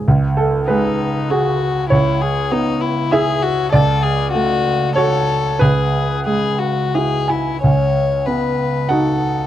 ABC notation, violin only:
X:1
M:3/4
L:1/8
Q:1/4=96
K:C#m
V:1 name="Violin"
z2 D2 F2 | E G D E G F | A G F2 A2 | G2 G F G E |
c2 B2 A2 |]